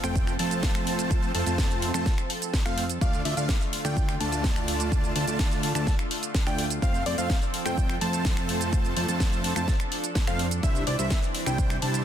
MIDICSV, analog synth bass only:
0, 0, Header, 1, 2, 480
1, 0, Start_track
1, 0, Key_signature, -1, "major"
1, 0, Tempo, 476190
1, 1118, Time_signature, 4, 2, 24, 8
1, 12141, End_track
2, 0, Start_track
2, 0, Title_t, "Analog synth bass"
2, 0, Program_c, 0, 38
2, 36, Note_on_c, 0, 41, 97
2, 373, Note_off_c, 0, 41, 0
2, 398, Note_on_c, 0, 41, 96
2, 1334, Note_off_c, 0, 41, 0
2, 1357, Note_on_c, 0, 41, 99
2, 1454, Note_off_c, 0, 41, 0
2, 1477, Note_on_c, 0, 41, 92
2, 1933, Note_off_c, 0, 41, 0
2, 1957, Note_on_c, 0, 41, 97
2, 2122, Note_off_c, 0, 41, 0
2, 2678, Note_on_c, 0, 41, 97
2, 3014, Note_off_c, 0, 41, 0
2, 3038, Note_on_c, 0, 38, 103
2, 3254, Note_off_c, 0, 38, 0
2, 3277, Note_on_c, 0, 38, 93
2, 3373, Note_off_c, 0, 38, 0
2, 3397, Note_on_c, 0, 38, 93
2, 3563, Note_off_c, 0, 38, 0
2, 3877, Note_on_c, 0, 38, 99
2, 4213, Note_off_c, 0, 38, 0
2, 4238, Note_on_c, 0, 38, 95
2, 5174, Note_off_c, 0, 38, 0
2, 5199, Note_on_c, 0, 38, 98
2, 5294, Note_off_c, 0, 38, 0
2, 5318, Note_on_c, 0, 38, 93
2, 5774, Note_off_c, 0, 38, 0
2, 5797, Note_on_c, 0, 38, 101
2, 5963, Note_off_c, 0, 38, 0
2, 6518, Note_on_c, 0, 38, 92
2, 6854, Note_off_c, 0, 38, 0
2, 6878, Note_on_c, 0, 41, 101
2, 7094, Note_off_c, 0, 41, 0
2, 7118, Note_on_c, 0, 41, 97
2, 7214, Note_off_c, 0, 41, 0
2, 7239, Note_on_c, 0, 41, 97
2, 7403, Note_off_c, 0, 41, 0
2, 7718, Note_on_c, 0, 41, 98
2, 8054, Note_off_c, 0, 41, 0
2, 8077, Note_on_c, 0, 41, 98
2, 9014, Note_off_c, 0, 41, 0
2, 9038, Note_on_c, 0, 41, 90
2, 9134, Note_off_c, 0, 41, 0
2, 9158, Note_on_c, 0, 41, 92
2, 9614, Note_off_c, 0, 41, 0
2, 9638, Note_on_c, 0, 41, 97
2, 9803, Note_off_c, 0, 41, 0
2, 10357, Note_on_c, 0, 41, 93
2, 10693, Note_off_c, 0, 41, 0
2, 10717, Note_on_c, 0, 36, 104
2, 10933, Note_off_c, 0, 36, 0
2, 10957, Note_on_c, 0, 36, 97
2, 11054, Note_off_c, 0, 36, 0
2, 11077, Note_on_c, 0, 36, 97
2, 11243, Note_off_c, 0, 36, 0
2, 11558, Note_on_c, 0, 36, 97
2, 11894, Note_off_c, 0, 36, 0
2, 11918, Note_on_c, 0, 36, 101
2, 12141, Note_off_c, 0, 36, 0
2, 12141, End_track
0, 0, End_of_file